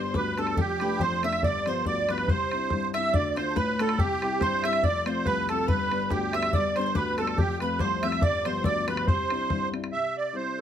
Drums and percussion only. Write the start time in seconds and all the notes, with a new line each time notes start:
0.14 bodhran
0.38 bodhran
0.47 bodhran
0.57 bodhran
0.80 bodhran
0.99 bodhran
1.23 bodhran
1.33 bodhran
1.43 bodhran
1.66 bodhran
1.85 bodhran
2.09 bodhran
2.18 bodhran
2.28 bodhran
2.51 bodhran
2.70 bodhran
2.94 bodhran
3.13 bodhran
3.37 bodhran
3.56 bodhran
3.79 bodhran
3.89 bodhran
3.98 bodhran
4.22 bodhran
4.41 bodhran
4.64 bodhran
4.73 bodhran
4.83 bodhran
5.06 bodhran
5.25 bodhran
5.49 bodhran
5.68 bodhran
5.92 bodhran
6.10 bodhran
6.33 bodhran
6.43 bodhran
6.53 bodhran
6.76 bodhran
6.95 bodhran
7.18 bodhran
7.27 bodhran
7.38 bodhran
7.60 bodhran
7.79 bodhran
8.03 bodhran
8.12 bodhran
8.22 bodhran
8.45 bodhran
8.64 bodhran
8.88 bodhran
8.97 bodhran
9.07 bodhran
9.30 bodhran
9.50 bodhran
9.74 bodhran
9.84 bodhran